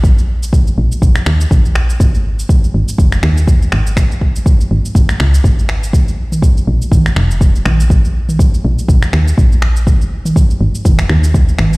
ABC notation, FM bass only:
X:1
M:4/4
L:1/8
Q:"Swing 16ths" 1/4=122
K:A#phr
V:1 name="FM bass" clef=bass
A,,,3 A,,, A,,, D,, A,,,2 | G,,,2 z G,,, F,,, D,,2 G,,,- | G,,,3 G,,, G,,, C,, G,,,2 | A,,,2 z A,,, G,,, E,,,2 A,,,- |
A,,,3 A,,, A,,, D,, A,,,2 | G,,,2 z G,,, F,,, D,,2 G,,, |]